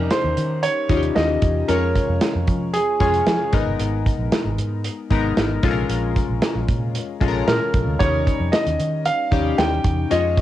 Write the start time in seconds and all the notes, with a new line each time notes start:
Already playing: G3 C#4 D#4 A#4
0.11 C5, snare, closed hi-hat
0.24 D#2
0.37 D#3, closed hi-hat
0.63 C#5, closed hi-hat
0.89 D#2 G3 C#4 D#4 F4, kick, closed hi-hat
0.97 G4
1.03 closed hi-hat
1.15 D#2 D#5, snare, closed hi-hat
1.42 E2, kick, closed hi-hat
1.68 F2 G#3 C#4 F4 A#4 C#5, closed hi-hat
1.95 kick, closed hi-hat
2.09 F2
2.21 snare, closed hi-hat
2.35 F2
2.47 F3, kick, closed hi-hat
2.73 G#4, closed hi-hat
3.00 F2 G#3 C#4 F4 G#4 C#5, kick, closed hi-hat
3.14 closed hi-hat
3.27 F3, snare, closed hi-hat
3.52 G#1 G#3 B3 D#4 A#4, kick, closed hi-hat
3.66 G1
3.79 G#1, closed hi-hat
4.06 kick, closed hi-hat
4.19 A#1
4.32 snare, closed hi-hat
4.45 G#1
4.58 G#2, closed hi-hat
4.84 closed hi-hat
5.10 G#1 G#3 B3 D#4 A#4, kick, closed hi-hat
5.37 G#1, snare, closed hi-hat
5.63 A#1 G#3 C#4 F4 A4, kick, closed hi-hat
5.71 A#4
5.89 A#1, closed hi-hat
6.16 kick, closed hi-hat
6.29 A#1
6.42 snare, closed hi-hat
6.55 A#1
6.68 A#2, kick, closed hi-hat
6.95 closed hi-hat
7.21 A#1 G#3 C#4 F4 A4, kick, closed hi-hat
7.28 A#4
7.47 A#2 A#4, snare, closed hi-hat
7.74 A#1, kick, closed hi-hat
7.87 D2
7.99 D#2 G3 C#4 D#4 A#4 C#5, kick, closed hi-hat
8.27 kick, closed hi-hat
8.40 F2
8.52 D#5, snare, closed hi-hat
8.66 D#2, closed hi-hat
8.80 D#3, closed hi-hat
9.06 F5, closed hi-hat
9.31 D#2 G3 C#4 D#4 G4, kick, closed hi-hat
9.58 D#2 G5, snare, closed hi-hat
9.84 E2, kick, closed hi-hat
10.10 F2 G#3 C#4 F4 C#5 D#5, closed hi-hat
10.37 kick, closed hi-hat